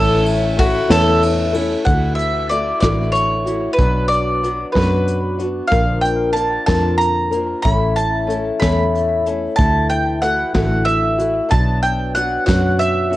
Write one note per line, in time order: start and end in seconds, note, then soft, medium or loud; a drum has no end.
0.00 0.79 A1 loud
0.00 0.57 A2 medium
0.00 0.57 E3 medium
0.00 0.55 A3 medium
0.00 0.56 C#4 medium
0.00 0.57 E4 medium
0.00 0.26 A4 loud
0.00 0.57 A4 medium
0.00 0.57 C#5 loud
0.26 ride medium
0.57 0.89 A3 medium
0.57 0.89 C#4 medium
0.57 0.88 E4 medium
0.57 0.90 F#4 loud
0.57 0.88 A4 medium
0.57 kick medium
0.57 ride medium
0.89 1.75 E2 loud
0.89 1.55 A2 medium
0.89 1.55 E3 medium
0.89 1.54 A3 medium
0.89 1.54 C#4 medium
0.89 1.53 E4 medium
0.89 1.54 E4 medium
0.89 1.53 A4 medium
0.89 1.52 A4 medium
0.89 1.22 A4 loud
0.89 1.53 B4 medium
0.89 snare loud
0.89 ride medium
1.23 ride medium
1.53 1.84 A3 medium
1.53 1.85 C#4 medium
1.53 1.85 E4 medium
1.53 1.86 A4 medium
1.53 ride medium
1.85 2.71 D2 medium
1.85 2.50 D3 medium
1.85 2.49 E3 medium
1.85 2.50 A3 medium
1.85 2.50 E4 medium
1.85 2.51 F#4 medium
1.85 2.15 F#5 medium
1.85 kick medium
1.85 closed hi-hat medium
2.15 2.50 E5 medium
2.15 closed hi-hat medium
2.49 2.82 E3 medium
2.49 2.82 A3 medium
2.49 2.82 E4 medium
2.49 2.81 F#4 medium
2.49 2.79 D5 medium
2.49 closed hi-hat medium
2.80 3.67 A1 medium
2.80 3.47 D3 medium
2.80 3.47 E3 medium
2.80 3.47 A3 medium
2.80 3.46 E4 medium
2.80 3.44 F#4 medium
2.80 3.11 D5 medium
2.80 kick medium
2.80 snare loud
2.80 closed hi-hat medium
3.12 3.73 C#5 medium
3.12 closed hi-hat medium
3.45 3.79 A3 soft
3.45 3.79 E4 soft
3.45 3.78 F#4 medium
3.45 closed hi-hat soft
3.73 4.08 B4 medium
3.78 4.63 B1 medium
3.78 4.43 B2 medium
3.78 4.42 F#3 medium
3.78 4.42 B3 medium
3.78 4.44 D4 medium
3.78 4.44 F#4 medium
3.78 kick loud
3.78 closed hi-hat medium
4.08 4.72 D5 medium
4.08 closed hi-hat medium
4.43 4.73 F#3 medium
4.43 4.73 B3 medium
4.43 4.73 D4 medium
4.43 4.73 F#4 medium
4.43 closed hi-hat medium
4.72 5.60 F#2 medium
4.72 5.40 B2 medium
4.72 5.39 F#3 medium
4.72 5.39 B3 medium
4.72 5.38 D4 medium
4.72 5.37 F#4 medium
4.72 5.42 B4 medium
4.72 kick medium
4.72 snare loud
4.72 closed hi-hat medium
5.08 closed hi-hat medium
5.39 5.71 B3 soft
5.39 5.70 D4 soft
5.39 5.71 F#4 soft
5.39 closed hi-hat medium
5.67 6.36 A#2 medium
5.67 6.35 D3 medium
5.67 6.32 F3 medium
5.67 6.33 A#3 medium
5.67 6.01 F5 medium
5.71 6.57 A#1 medium
5.71 6.34 D4 medium
5.71 6.35 A#4 medium
5.71 kick loud
5.71 closed hi-hat medium
6.01 6.32 G5 medium
6.01 closed hi-hat medium
6.33 6.67 F3 medium
6.33 6.67 A#3 medium
6.33 6.66 D4 medium
6.33 6.66 A#4 medium
6.33 6.65 A5 medium
6.33 closed hi-hat medium
6.66 7.53 F2 medium
6.66 7.33 A#2 medium
6.66 7.33 D3 medium
6.66 7.33 F3 medium
6.66 7.32 A#3 medium
6.66 7.31 D4 medium
6.66 7.30 A#4 medium
6.66 6.97 A5 loud
6.66 kick medium
6.66 snare loud
6.66 closed hi-hat medium
6.98 7.60 A#5 loud
6.98 closed hi-hat medium
7.31 7.64 F3 soft
7.31 7.65 A#3 soft
7.31 7.65 D4 soft
7.31 7.64 A#4 medium
7.31 closed hi-hat medium
7.62 8.50 A1 medium
7.62 8.29 A2 medium
7.62 8.62 E3 medium
7.62 8.26 A3 medium
7.62 8.26 C#4 medium
7.62 8.29 E4 medium
7.62 8.29 A4 medium
7.62 7.96 B5 loud
7.62 kick medium
7.62 closed hi-hat medium
7.96 8.59 A5 medium
7.96 closed hi-hat medium
8.27 8.60 A3 medium
8.27 8.60 C#4 medium
8.27 8.60 E4 medium
8.27 8.59 A4 medium
8.27 closed hi-hat medium
8.60 9.47 E2 medium
8.60 9.26 A2 medium
8.60 9.26 E3 medium
8.60 9.26 A3 medium
8.60 9.26 C#4 medium
8.60 9.26 E4 medium
8.60 9.25 A4 medium
8.60 9.29 B5 medium
8.60 kick medium
8.60 snare loud
8.60 closed hi-hat medium
8.95 closed hi-hat medium
9.26 9.56 A3 soft
9.26 9.57 C#4 soft
9.26 9.57 E4 soft
9.26 9.58 A4 medium
9.26 closed hi-hat medium
9.56 10.43 D2 medium
9.56 10.22 D3 medium
9.56 10.20 E3 medium
9.56 10.21 A3 medium
9.56 10.21 E4 medium
9.56 9.89 A5 medium
9.56 kick medium
9.56 closed hi-hat medium
9.90 10.21 G5 medium
9.90 closed hi-hat medium
10.21 10.54 E3 medium
10.21 10.53 A3 medium
10.21 10.53 E4 medium
10.21 10.53 F#4 medium
10.21 10.53 F#5 medium
10.21 closed hi-hat medium
10.54 11.40 A1 medium
10.54 11.19 D3 medium
10.54 11.19 E3 medium
10.54 11.19 A3 medium
10.54 11.17 E4 medium
10.54 11.17 F#4 medium
10.54 10.85 F#5 medium
10.54 kick medium
10.54 snare loud
10.54 closed hi-hat medium
10.85 11.52 E5 medium
10.85 closed hi-hat medium
11.18 11.49 A3 soft
11.18 11.50 E4 soft
11.18 11.51 F#4 soft
11.18 closed hi-hat medium
11.49 12.37 B1 medium
11.49 12.14 B2 medium
11.49 12.14 F#3 medium
11.49 12.15 B3 medium
11.49 12.16 D4 medium
11.49 11.81 A5 loud
11.49 kick medium
11.49 closed hi-hat medium
11.83 12.13 G5 medium
11.83 closed hi-hat medium
12.15 12.46 F#3 medium
12.15 12.46 B3 medium
12.15 12.45 D4 medium
12.15 12.45 F#4 medium
12.15 12.45 F#5 medium
12.15 closed hi-hat medium
12.46 13.17 F#2 medium
12.46 13.12 B2 medium
12.46 13.12 F#3 medium
12.46 13.12 B3 medium
12.46 13.10 D4 medium
12.46 13.09 F#4 medium
12.46 12.80 F#5 medium
12.46 kick medium
12.46 snare loud
12.46 closed hi-hat medium
12.79 13.17 E5 medium
12.79 closed hi-hat medium
13.10 13.17 B3 soft
13.10 13.17 D4 medium
13.10 13.17 F#4 medium
13.10 closed hi-hat medium